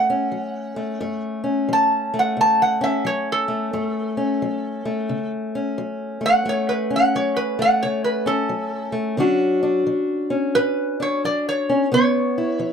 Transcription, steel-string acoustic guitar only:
0, 0, Header, 1, 2, 480
1, 0, Start_track
1, 0, Key_signature, 3, "minor"
1, 0, Tempo, 681044
1, 715, Time_signature, 4, 2, 24, 8
1, 8970, End_track
2, 0, Start_track
2, 0, Title_t, "Steel-string acoustic guitar"
2, 0, Program_c, 0, 25
2, 0, Note_on_c, 0, 49, 63
2, 0, Note_on_c, 0, 57, 60
2, 0, Note_on_c, 0, 69, 67
2, 69, Note_on_c, 0, 61, 59
2, 201, Note_off_c, 0, 49, 0
2, 222, Note_on_c, 0, 54, 63
2, 535, Note_off_c, 0, 57, 0
2, 538, Note_on_c, 0, 57, 53
2, 674, Note_off_c, 0, 54, 0
2, 708, Note_off_c, 0, 57, 0
2, 708, Note_on_c, 0, 42, 72
2, 711, Note_on_c, 0, 57, 61
2, 1010, Note_off_c, 0, 61, 0
2, 1012, Note_on_c, 0, 61, 60
2, 1157, Note_off_c, 0, 42, 0
2, 1188, Note_on_c, 0, 54, 67
2, 1291, Note_off_c, 0, 69, 0
2, 1503, Note_off_c, 0, 57, 0
2, 1506, Note_on_c, 0, 57, 60
2, 1636, Note_off_c, 0, 54, 0
2, 1668, Note_on_c, 0, 49, 62
2, 1977, Note_off_c, 0, 61, 0
2, 1980, Note_on_c, 0, 61, 64
2, 2116, Note_off_c, 0, 49, 0
2, 2147, Note_on_c, 0, 54, 62
2, 2451, Note_off_c, 0, 57, 0
2, 2454, Note_on_c, 0, 57, 57
2, 2595, Note_off_c, 0, 54, 0
2, 2628, Note_off_c, 0, 57, 0
2, 2631, Note_on_c, 0, 57, 63
2, 2634, Note_on_c, 0, 42, 75
2, 2937, Note_off_c, 0, 61, 0
2, 2940, Note_on_c, 0, 61, 56
2, 3079, Note_off_c, 0, 42, 0
2, 3115, Note_on_c, 0, 54, 62
2, 3418, Note_off_c, 0, 57, 0
2, 3421, Note_on_c, 0, 57, 61
2, 3560, Note_off_c, 0, 54, 0
2, 3590, Note_on_c, 0, 49, 63
2, 3910, Note_off_c, 0, 61, 0
2, 3912, Note_on_c, 0, 61, 64
2, 4037, Note_off_c, 0, 49, 0
2, 4073, Note_on_c, 0, 54, 65
2, 4372, Note_off_c, 0, 57, 0
2, 4375, Note_on_c, 0, 57, 56
2, 4518, Note_off_c, 0, 54, 0
2, 4546, Note_off_c, 0, 57, 0
2, 4549, Note_on_c, 0, 57, 63
2, 4552, Note_on_c, 0, 42, 77
2, 4863, Note_off_c, 0, 61, 0
2, 4866, Note_on_c, 0, 61, 59
2, 4997, Note_off_c, 0, 42, 0
2, 5041, Note_on_c, 0, 54, 64
2, 5345, Note_off_c, 0, 57, 0
2, 5348, Note_on_c, 0, 57, 57
2, 5482, Note_off_c, 0, 54, 0
2, 5519, Note_on_c, 0, 49, 64
2, 5818, Note_off_c, 0, 61, 0
2, 5821, Note_on_c, 0, 61, 60
2, 5961, Note_off_c, 0, 49, 0
2, 5986, Note_on_c, 0, 54, 61
2, 6280, Note_off_c, 0, 57, 0
2, 6289, Note_on_c, 0, 57, 54
2, 6435, Note_off_c, 0, 54, 0
2, 6464, Note_on_c, 0, 50, 75
2, 6466, Note_off_c, 0, 57, 0
2, 6471, Note_on_c, 0, 54, 63
2, 6475, Note_off_c, 0, 61, 0
2, 6475, Note_on_c, 0, 61, 59
2, 6481, Note_on_c, 0, 62, 62
2, 6484, Note_on_c, 0, 66, 72
2, 6777, Note_off_c, 0, 62, 0
2, 6785, Note_on_c, 0, 62, 59
2, 6914, Note_off_c, 0, 50, 0
2, 6945, Note_off_c, 0, 54, 0
2, 6953, Note_on_c, 0, 54, 63
2, 7258, Note_off_c, 0, 61, 0
2, 7261, Note_on_c, 0, 61, 60
2, 7399, Note_off_c, 0, 54, 0
2, 7435, Note_on_c, 0, 45, 60
2, 7743, Note_off_c, 0, 62, 0
2, 7752, Note_on_c, 0, 62, 61
2, 7879, Note_off_c, 0, 45, 0
2, 7925, Note_on_c, 0, 54, 62
2, 8240, Note_off_c, 0, 61, 0
2, 8242, Note_on_c, 0, 61, 58
2, 8365, Note_off_c, 0, 54, 0
2, 8377, Note_off_c, 0, 62, 0
2, 8396, Note_off_c, 0, 61, 0
2, 8398, Note_on_c, 0, 59, 67
2, 8399, Note_off_c, 0, 66, 0
2, 8403, Note_on_c, 0, 49, 74
2, 8724, Note_on_c, 0, 64, 58
2, 8844, Note_off_c, 0, 49, 0
2, 8877, Note_on_c, 0, 53, 66
2, 8970, Note_off_c, 0, 53, 0
2, 8970, Note_off_c, 0, 59, 0
2, 8970, Note_off_c, 0, 64, 0
2, 8970, End_track
0, 0, End_of_file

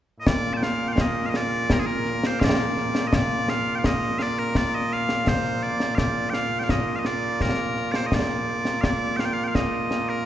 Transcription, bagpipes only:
0, 0, Header, 1, 2, 480
1, 0, Start_track
1, 0, Key_signature, -2, "major"
1, 0, Tempo, 714286
1, 183, Time_signature, 2, 2, 24, 8
1, 6892, End_track
2, 0, Start_track
2, 0, Title_t, "Bagpipes"
2, 0, Program_c, 0, 109
2, 136, Note_on_c, 0, 46, 89
2, 136, Note_on_c, 0, 58, 89
2, 136, Note_on_c, 0, 65, 89
2, 136, Note_on_c, 0, 75, 75
2, 183, Note_off_c, 0, 75, 0
2, 183, Note_on_c, 0, 74, 98
2, 360, Note_off_c, 0, 74, 0
2, 360, Note_on_c, 0, 81, 76
2, 382, Note_off_c, 0, 81, 0
2, 382, Note_on_c, 0, 79, 76
2, 424, Note_off_c, 0, 79, 0
2, 424, Note_on_c, 0, 77, 107
2, 593, Note_off_c, 0, 77, 0
2, 593, Note_on_c, 0, 79, 71
2, 623, Note_off_c, 0, 79, 0
2, 623, Note_on_c, 0, 77, 71
2, 679, Note_off_c, 0, 77, 0
2, 679, Note_on_c, 0, 75, 89
2, 846, Note_off_c, 0, 75, 0
2, 846, Note_on_c, 0, 77, 71
2, 869, Note_off_c, 0, 77, 0
2, 869, Note_on_c, 0, 75, 71
2, 918, Note_off_c, 0, 75, 0
2, 918, Note_on_c, 0, 74, 98
2, 1159, Note_off_c, 0, 74, 0
2, 1159, Note_on_c, 0, 70, 84
2, 1207, Note_off_c, 0, 70, 0
2, 1207, Note_on_c, 0, 68, 69
2, 1251, Note_off_c, 0, 68, 0
2, 1251, Note_on_c, 0, 70, 90
2, 1521, Note_off_c, 0, 70, 0
2, 1521, Note_on_c, 0, 72, 93
2, 1612, Note_off_c, 0, 72, 0
2, 1612, Note_on_c, 0, 77, 84
2, 1641, Note_off_c, 0, 77, 0
2, 1641, Note_on_c, 0, 74, 84
2, 2066, Note_off_c, 0, 74, 0
2, 2066, Note_on_c, 0, 75, 80
2, 2114, Note_off_c, 0, 75, 0
2, 2114, Note_on_c, 0, 74, 98
2, 2350, Note_off_c, 0, 74, 0
2, 2350, Note_on_c, 0, 77, 113
2, 2522, Note_off_c, 0, 77, 0
2, 2522, Note_on_c, 0, 79, 71
2, 2545, Note_off_c, 0, 79, 0
2, 2545, Note_on_c, 0, 77, 71
2, 2592, Note_off_c, 0, 77, 0
2, 2592, Note_on_c, 0, 75, 94
2, 2812, Note_off_c, 0, 75, 0
2, 2812, Note_on_c, 0, 77, 92
2, 2839, Note_off_c, 0, 77, 0
2, 2839, Note_on_c, 0, 74, 92
2, 2948, Note_off_c, 0, 74, 0
2, 2948, Note_on_c, 0, 70, 89
2, 3069, Note_off_c, 0, 70, 0
2, 3069, Note_on_c, 0, 74, 96
2, 3192, Note_off_c, 0, 74, 0
2, 3192, Note_on_c, 0, 75, 95
2, 3311, Note_off_c, 0, 75, 0
2, 3311, Note_on_c, 0, 77, 111
2, 3551, Note_off_c, 0, 77, 0
2, 3551, Note_on_c, 0, 72, 81
2, 3782, Note_off_c, 0, 72, 0
2, 3782, Note_on_c, 0, 74, 89
2, 4000, Note_off_c, 0, 74, 0
2, 4000, Note_on_c, 0, 77, 88
2, 4021, Note_off_c, 0, 77, 0
2, 4021, Note_on_c, 0, 74, 88
2, 4233, Note_on_c, 0, 79, 107
2, 4234, Note_off_c, 0, 74, 0
2, 4259, Note_off_c, 0, 79, 0
2, 4259, Note_on_c, 0, 77, 107
2, 4430, Note_off_c, 0, 77, 0
2, 4430, Note_on_c, 0, 79, 79
2, 4459, Note_off_c, 0, 79, 0
2, 4459, Note_on_c, 0, 77, 79
2, 4504, Note_off_c, 0, 77, 0
2, 4504, Note_on_c, 0, 75, 75
2, 4675, Note_off_c, 0, 75, 0
2, 4675, Note_on_c, 0, 77, 66
2, 4697, Note_off_c, 0, 77, 0
2, 4697, Note_on_c, 0, 75, 66
2, 4748, Note_off_c, 0, 75, 0
2, 4748, Note_on_c, 0, 74, 90
2, 4984, Note_off_c, 0, 74, 0
2, 4984, Note_on_c, 0, 70, 87
2, 5319, Note_off_c, 0, 70, 0
2, 5319, Note_on_c, 0, 74, 82
2, 5348, Note_off_c, 0, 74, 0
2, 5348, Note_on_c, 0, 72, 82
2, 5420, Note_off_c, 0, 72, 0
2, 5420, Note_on_c, 0, 75, 62
2, 5474, Note_off_c, 0, 75, 0
2, 5474, Note_on_c, 0, 74, 78
2, 5922, Note_off_c, 0, 74, 0
2, 5922, Note_on_c, 0, 77, 83
2, 5944, Note_off_c, 0, 77, 0
2, 5944, Note_on_c, 0, 74, 83
2, 6159, Note_off_c, 0, 74, 0
2, 6159, Note_on_c, 0, 79, 94
2, 6181, Note_off_c, 0, 79, 0
2, 6181, Note_on_c, 0, 77, 94
2, 6217, Note_off_c, 0, 77, 0
2, 6217, Note_on_c, 0, 79, 92
2, 6272, Note_off_c, 0, 79, 0
2, 6272, Note_on_c, 0, 77, 99
2, 6343, Note_off_c, 0, 77, 0
2, 6343, Note_on_c, 0, 79, 71
2, 6368, Note_off_c, 0, 79, 0
2, 6368, Note_on_c, 0, 77, 71
2, 6420, Note_off_c, 0, 77, 0
2, 6420, Note_on_c, 0, 75, 72
2, 6782, Note_off_c, 0, 75, 0
2, 6782, Note_on_c, 0, 70, 80
2, 6892, Note_off_c, 0, 46, 0
2, 6892, Note_off_c, 0, 58, 0
2, 6892, Note_off_c, 0, 65, 0
2, 6892, Note_off_c, 0, 70, 0
2, 6892, End_track
0, 0, End_of_file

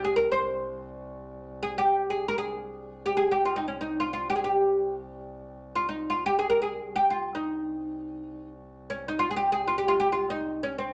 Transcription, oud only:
0, 0, Header, 1, 2, 480
1, 0, Start_track
1, 0, Tempo, 500000
1, 10493, End_track
2, 0, Start_track
2, 0, Title_t, "Oud"
2, 0, Program_c, 0, 24
2, 44, Note_on_c, 0, 68, 74
2, 151, Note_off_c, 0, 68, 0
2, 155, Note_on_c, 0, 70, 84
2, 296, Note_off_c, 0, 70, 0
2, 304, Note_on_c, 0, 72, 85
2, 843, Note_off_c, 0, 72, 0
2, 1561, Note_on_c, 0, 68, 85
2, 1705, Note_off_c, 0, 68, 0
2, 1709, Note_on_c, 0, 67, 81
2, 2014, Note_off_c, 0, 67, 0
2, 2018, Note_on_c, 0, 68, 78
2, 2188, Note_off_c, 0, 68, 0
2, 2192, Note_on_c, 0, 70, 88
2, 2281, Note_off_c, 0, 70, 0
2, 2285, Note_on_c, 0, 68, 79
2, 2930, Note_off_c, 0, 68, 0
2, 2934, Note_on_c, 0, 67, 73
2, 3037, Note_off_c, 0, 67, 0
2, 3041, Note_on_c, 0, 68, 85
2, 3177, Note_off_c, 0, 68, 0
2, 3181, Note_on_c, 0, 67, 75
2, 3311, Note_off_c, 0, 67, 0
2, 3315, Note_on_c, 0, 65, 73
2, 3418, Note_on_c, 0, 63, 72
2, 3428, Note_off_c, 0, 65, 0
2, 3526, Note_off_c, 0, 63, 0
2, 3530, Note_on_c, 0, 61, 64
2, 3652, Note_off_c, 0, 61, 0
2, 3656, Note_on_c, 0, 63, 67
2, 3839, Note_on_c, 0, 65, 71
2, 3850, Note_off_c, 0, 63, 0
2, 3955, Note_off_c, 0, 65, 0
2, 3966, Note_on_c, 0, 65, 72
2, 4106, Note_off_c, 0, 65, 0
2, 4125, Note_on_c, 0, 67, 76
2, 4177, Note_off_c, 0, 67, 0
2, 4181, Note_on_c, 0, 68, 56
2, 4243, Note_off_c, 0, 68, 0
2, 4264, Note_on_c, 0, 67, 68
2, 5019, Note_off_c, 0, 67, 0
2, 5525, Note_on_c, 0, 65, 75
2, 5631, Note_off_c, 0, 65, 0
2, 5651, Note_on_c, 0, 63, 65
2, 5854, Note_on_c, 0, 65, 72
2, 5863, Note_off_c, 0, 63, 0
2, 6005, Note_off_c, 0, 65, 0
2, 6008, Note_on_c, 0, 67, 86
2, 6128, Note_off_c, 0, 67, 0
2, 6132, Note_on_c, 0, 68, 85
2, 6233, Note_off_c, 0, 68, 0
2, 6236, Note_on_c, 0, 70, 78
2, 6349, Note_off_c, 0, 70, 0
2, 6352, Note_on_c, 0, 68, 74
2, 6674, Note_off_c, 0, 68, 0
2, 6678, Note_on_c, 0, 67, 80
2, 6816, Note_off_c, 0, 67, 0
2, 6820, Note_on_c, 0, 65, 75
2, 7042, Note_off_c, 0, 65, 0
2, 7054, Note_on_c, 0, 63, 67
2, 8141, Note_off_c, 0, 63, 0
2, 8543, Note_on_c, 0, 61, 76
2, 8713, Note_off_c, 0, 61, 0
2, 8720, Note_on_c, 0, 63, 70
2, 8819, Note_off_c, 0, 63, 0
2, 8824, Note_on_c, 0, 65, 82
2, 8930, Note_off_c, 0, 65, 0
2, 8934, Note_on_c, 0, 68, 66
2, 8971, Note_off_c, 0, 68, 0
2, 8990, Note_on_c, 0, 67, 77
2, 9137, Note_off_c, 0, 67, 0
2, 9141, Note_on_c, 0, 68, 86
2, 9255, Note_off_c, 0, 68, 0
2, 9288, Note_on_c, 0, 65, 76
2, 9385, Note_off_c, 0, 65, 0
2, 9389, Note_on_c, 0, 67, 80
2, 9478, Note_off_c, 0, 67, 0
2, 9487, Note_on_c, 0, 65, 81
2, 9592, Note_off_c, 0, 65, 0
2, 9596, Note_on_c, 0, 67, 84
2, 9714, Note_off_c, 0, 67, 0
2, 9718, Note_on_c, 0, 65, 78
2, 9888, Note_on_c, 0, 63, 85
2, 9890, Note_off_c, 0, 65, 0
2, 10202, Note_off_c, 0, 63, 0
2, 10206, Note_on_c, 0, 61, 73
2, 10349, Note_off_c, 0, 61, 0
2, 10353, Note_on_c, 0, 60, 71
2, 10493, Note_off_c, 0, 60, 0
2, 10493, End_track
0, 0, End_of_file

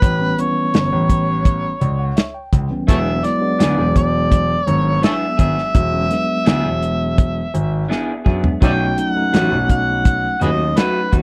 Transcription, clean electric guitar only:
0, 0, Header, 1, 2, 480
1, 0, Start_track
1, 0, Tempo, 716846
1, 10, Time_signature, 4, 2, 24, 8
1, 7513, End_track
2, 0, Start_track
2, 0, Title_t, "Clean electric guitar"
2, 0, Program_c, 0, 27
2, 1923, Note_on_c, 0, 52, 76
2, 1929, Note_on_c, 0, 59, 85
2, 1932, Note_on_c, 0, 62, 85
2, 1935, Note_on_c, 0, 68, 73
2, 2070, Note_off_c, 0, 52, 0
2, 2073, Note_off_c, 0, 59, 0
2, 2075, Note_off_c, 0, 62, 0
2, 2077, Note_off_c, 0, 68, 0
2, 2401, Note_on_c, 0, 52, 74
2, 2405, Note_on_c, 0, 59, 88
2, 2409, Note_on_c, 0, 62, 93
2, 2414, Note_on_c, 0, 68, 86
2, 2550, Note_off_c, 0, 52, 0
2, 2551, Note_off_c, 0, 59, 0
2, 2553, Note_off_c, 0, 62, 0
2, 2556, Note_off_c, 0, 68, 0
2, 3359, Note_on_c, 0, 52, 66
2, 3363, Note_on_c, 0, 59, 72
2, 3368, Note_on_c, 0, 62, 76
2, 3372, Note_on_c, 0, 68, 77
2, 3509, Note_off_c, 0, 52, 0
2, 3511, Note_off_c, 0, 59, 0
2, 3513, Note_off_c, 0, 62, 0
2, 3515, Note_off_c, 0, 68, 0
2, 3597, Note_on_c, 0, 68, 50
2, 3607, Note_on_c, 0, 62, 39
2, 3615, Note_on_c, 0, 59, 42
2, 3748, Note_off_c, 0, 68, 0
2, 3753, Note_off_c, 0, 62, 0
2, 3757, Note_off_c, 0, 59, 0
2, 4319, Note_on_c, 0, 52, 86
2, 4324, Note_on_c, 0, 59, 80
2, 4327, Note_on_c, 0, 62, 93
2, 4330, Note_on_c, 0, 68, 90
2, 4469, Note_off_c, 0, 52, 0
2, 4471, Note_off_c, 0, 59, 0
2, 4473, Note_off_c, 0, 62, 0
2, 4475, Note_off_c, 0, 68, 0
2, 5280, Note_on_c, 0, 52, 74
2, 5285, Note_on_c, 0, 59, 81
2, 5289, Note_on_c, 0, 62, 81
2, 5294, Note_on_c, 0, 68, 89
2, 5430, Note_off_c, 0, 52, 0
2, 5432, Note_off_c, 0, 59, 0
2, 5434, Note_off_c, 0, 62, 0
2, 5437, Note_off_c, 0, 68, 0
2, 5521, Note_on_c, 0, 68, 51
2, 5530, Note_on_c, 0, 62, 43
2, 5538, Note_on_c, 0, 59, 48
2, 5671, Note_off_c, 0, 68, 0
2, 5675, Note_off_c, 0, 62, 0
2, 5679, Note_off_c, 0, 59, 0
2, 5762, Note_on_c, 0, 54, 77
2, 5765, Note_on_c, 0, 57, 78
2, 5771, Note_on_c, 0, 63, 78
2, 5774, Note_on_c, 0, 66, 83
2, 5911, Note_off_c, 0, 54, 0
2, 5913, Note_off_c, 0, 57, 0
2, 5916, Note_off_c, 0, 63, 0
2, 5917, Note_off_c, 0, 66, 0
2, 6246, Note_on_c, 0, 54, 68
2, 6249, Note_on_c, 0, 57, 89
2, 6253, Note_on_c, 0, 63, 96
2, 6258, Note_on_c, 0, 66, 78
2, 6393, Note_off_c, 0, 54, 0
2, 6395, Note_off_c, 0, 57, 0
2, 6397, Note_off_c, 0, 63, 0
2, 6399, Note_off_c, 0, 66, 0
2, 6962, Note_on_c, 0, 66, 45
2, 6972, Note_on_c, 0, 63, 37
2, 6979, Note_on_c, 0, 57, 34
2, 7111, Note_off_c, 0, 66, 0
2, 7117, Note_off_c, 0, 63, 0
2, 7120, Note_off_c, 0, 57, 0
2, 7207, Note_on_c, 0, 54, 60
2, 7211, Note_on_c, 0, 57, 80
2, 7215, Note_on_c, 0, 63, 70
2, 7218, Note_on_c, 0, 66, 72
2, 7354, Note_off_c, 0, 54, 0
2, 7356, Note_off_c, 0, 57, 0
2, 7358, Note_off_c, 0, 63, 0
2, 7359, Note_off_c, 0, 66, 0
2, 7444, Note_on_c, 0, 66, 49
2, 7456, Note_on_c, 0, 63, 48
2, 7463, Note_on_c, 0, 57, 43
2, 7513, Note_off_c, 0, 57, 0
2, 7513, Note_off_c, 0, 63, 0
2, 7513, Note_off_c, 0, 66, 0
2, 7513, End_track
0, 0, End_of_file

